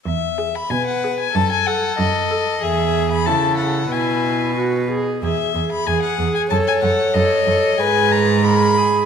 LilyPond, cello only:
\new Staff \with { instrumentName = "Cello" } { \clef bass \time 2/4 \key e \major \tempo 4 = 93 e,4 b,4 | fis,4 fis,4 | e,4 cis4 | b,4. r8 |
e,8 e,8 e,8 e,8 | fis,8 fis,8 fis,8 fis,8 | \key gis \minor gis,2 | }